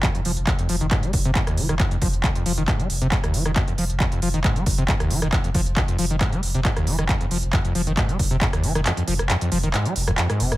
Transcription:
<<
  \new Staff \with { instrumentName = "Acid bass" } { \clef bass \time 4/4 \key f \minor \tempo 4 = 136 f,16 f,16 f16 r16 f,16 f,16 f16 ees16 aes,16 aes16 r16 c16 aes,16 ees,16 f16 ees16 | f,16 f,16 f16 r16 f,16 f,16 f16 ees16 aes,16 aes16 r16 c16 aes,16 ees,16 f16 ees16 | f,16 f,16 f16 r16 f,16 f,16 f16 ees16 aes,16 aes16 r16 c16 aes,16 ees,16 f16 ees16 | f,16 f,16 f16 r16 f,16 f,16 f16 ees16 aes,16 aes16 r16 c16 aes,16 ees,16 f16 ees16 |
f,16 f,16 f16 r16 f,16 f,16 f16 ees16 aes,16 aes16 r16 c16 aes,16 ees,16 f16 ees16 | f,16 f,16 f16 r16 f,16 f,16 f16 ees16 aes,16 aes16 r16 f,16 f,16 aes,16 c16 f,16 | }
  \new Staff \with { instrumentName = "Sub bass" } { \clef bass \time 4/4 \key f \minor r8 f,,16 f,,16 r8 f,,16 f,,16 r8 f,,16 f,,16 r8 f,,16 f,,16 | r8 f,,16 f,,16 r8 f,,16 f,,16 r8 f,,16 f,,16 r8 f,,16 f,,16 | r8 f,,16 f,,16 r8 f,,16 f,,16 r8 f,,16 f,,16 r8 f,,16 f,,16 | r8 f,,16 f,,16 r8 f,,16 f,,16 r8 f,,16 f,,16 r8 f,,16 f,,16 |
r8 f,,16 f,,16 r8 f,,16 f,,16 r8 f,,16 f,,16 r8 f,,16 f,,16 | r8 f,,16 f,,16 r8 f,,16 f,,16 r8 f,,16 f,,16 r8 f,,16 f,,16 | }
  \new DrumStaff \with { instrumentName = "Drums" } \drummode { \time 4/4 <hc hh bd>16 hh16 hho16 hh16 <hc hh bd>16 hh16 hho16 hh16 <hc hh bd>16 hh16 <hho bd>16 hh16 <hc hh bd>16 <hh ss>16 hho16 <hh ss>16 | <hc hh bd>16 hh16 <hho bd>16 hh16 <hc hh bd>16 hh16 hho16 hh16 <hc hh bd>16 hh16 hho16 hh16 <hc hh bd>16 <hh ss>16 hho16 <hh ss>16 | <hc hh bd>16 hh16 hho16 hh16 <hc hh bd>16 hh16 hho16 hh16 <hc hh bd>16 hh16 <hho bd>16 hh16 <hc hh bd>16 <hh ss>16 hho16 <hh ss>16 | <hc hh bd>16 hh16 <hho bd>16 hh16 <hc hh bd>16 hh16 hho16 hh16 <hc hh bd>16 hh16 hho16 hh16 <hc hh bd>16 <hh ss>16 hho16 <hh ss>16 |
<hc hh bd>16 hh16 hho16 hh16 <hc hh bd>16 hh16 hho16 hh16 <hc hh bd>16 hh16 <hho bd>16 hh16 <hc hh bd>16 <hh ss>16 hho16 <hh ss>16 | <hc hh>16 hh16 hho16 <hh ss>16 <hc hh>16 hh16 hho16 hh16 <hc hh>16 hh16 hho16 <hh ss>16 <hc hh>16 <hh ss>16 hho16 <hh ss>16 | }
>>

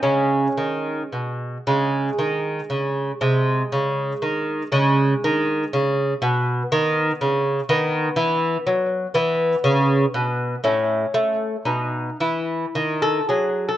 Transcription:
<<
  \new Staff \with { instrumentName = "Lute" } { \time 3/4 \key b \mixolydian \tempo 4 = 119 cis'2 r4 | r2. | r2. | r2. |
r2. | \key e \major r2. | r2. | r2. |
r4. a'8 gis'8. a'16 | }
  \new Staff \with { instrumentName = "Lute" } { \clef bass \time 3/4 \key b \mixolydian << { gis2. | gis2. | gis2. | gis2. |
b2. | \key e \major b2. | b2. | cis'2 dis'4 |
e'2. | } \\ { cis4 dis4 b,4 | cis4 dis4 cis4 | bis,4 cis4 dis4 | cis4 dis4 cis4 |
b,4 dis4 cis4 | dis4 e4 fis4 | e4 cis4 b,4 | a,4 a4 b,4 |
e4 dis4 fis4 | } >> }
>>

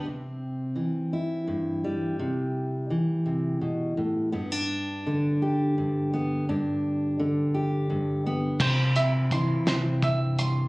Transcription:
<<
  \new Staff \with { instrumentName = "Five-string banjo" } { \time 6/8 \key c \lydian \tempo 4. = 56 r2. | r2. | r2. | r2. |
c''8 e''8 c'''8 c''8 e''8 c'''8 | }
  \new Staff \with { instrumentName = "Steel-string acoustic guitar" } { \clef bass \time 6/8 \key c \lydian << { c'4. e'4 g8~ | g2. | b16 d'4~ d'16 g'4 b8 | d'4. g'4 b8 |
r8 c'8 e'8 c'4 g8 | } \\ { c4 e4 g,4 | c4 e8 c8 b,8 a,8 | g,4 d4 g,4 | g,4 d4 g,4 |
c4 e4 g,4 | } >> }
  \new Staff \with { instrumentName = "Fingered electric bass" } { \clef bass \time 6/8 \key c \lydian r2. | r2. | r2. | r2. |
c,4. c,4. | }
  \new DrumStaff \with { instrumentName = "Drums" } \drummode { \time 6/8 r4. r4. | r4. r4. | r4. r4. | r4. r4. |
<cymc bd>8 hh8 <hh bd>8 <hh sn>8 <hh bd>8 hh8 | }
>>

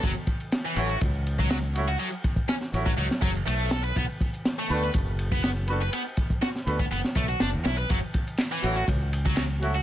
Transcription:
<<
  \new Staff \with { instrumentName = "Horn section" } { \time 4/4 \key fis \minor \tempo 4 = 122 r4. <fis a cis' e' fis'>8 r4. <fis a cis' e' fis'>16 r16 | r4. <fis a cis' e' fis'>16 r2 r16 | r4. <b d' fis' a' b'>8 r4. <b d' fis' a' b'>16 r16 | r4. <b d' fis' a' b'>16 r2 r16 |
r4. <fis a cis' e' fis'>8 r4. <fis a cis' e' fis'>16 r16 | }
  \new Staff \with { instrumentName = "Distorted electric guitar" } { \time 4/4 \key fis \minor fis16 r4 e8 fis'16 r8. fis16 fis16 r8 fis'16 | fis16 r8. cis'16 r8 fis16 fis16 r16 fis16 r16 a8 a'16 b'16 | b16 r4 a8 b'16 r8. b16 b16 r8 b'16 | b16 r8. fis'16 r8 b16 b16 r16 a16 fis'16 d'16 r16 e'16 b'16 |
fis16 r4 e8 fis'16 r8. fis16 fis16 r8 fis'16 | }
  \new Staff \with { instrumentName = "Fingered electric bass" } { \clef bass \time 4/4 \key fis \minor fis,,16 r4 r16 a,,16 r16 cis,2 | r4. a,,16 r16 cis,16 r16 fis,,16 r16 b,,4 | b,,16 r4 r16 d,16 r16 fis,,2 | r4. d,16 r16 fis,,16 r16 b,,16 r16 fis,,16 e,16 b,,16 r16 |
fis,,16 r4 r16 a,,16 r16 cis,2 | }
  \new DrumStaff \with { instrumentName = "Drums" } \drummode { \time 4/4 <hh bd cymr>16 hh16 <bd cymr>16 <hh cymr>16 <hh cymr sn>16 <hh cymr>16 cymr16 hh16 <hh bd cymr>16 hh16 cymr16 <hh bd>16 <hh cymr sn>16 hh16 cymr16 hh16 | <hh cymr>16 hh16 <bd cymr>16 <hh bd>16 <hh cymr sn>16 <hh sn>16 cymr16 <hh bd>16 <hh cymr>16 <hh sn>16 <bd cymr>16 hh16 <hh cymr>16 hh16 <cymr sn>16 hh16 | <hh bd cymr>16 hh16 <bd cymr>16 <hh cymr>16 <hh cymr sn>16 <hh cymr>16 cymr16 hh16 <hh bd cymr>16 hh16 cymr16 <hh bd>16 <hh cymr sn>16 hh16 cymr16 hh16 | <hh cymr>16 hh16 <bd cymr>16 <hh bd>16 <hh cymr sn>16 <hh sn>16 cymr16 <hh bd>16 <hh cymr>16 <hh sn>16 <bd cymr>16 hh16 <hh cymr sn>16 hh16 <cymr sn>16 hh16 |
<hh bd cymr>16 hh16 <bd cymr>16 <hh cymr>16 <hc hh cymr sn>16 <hh cymr>16 cymr16 hh16 <hh bd cymr>16 hh16 cymr16 <hh bd>16 <hc hh cymr sn>16 hh16 cymr16 hh16 | }
>>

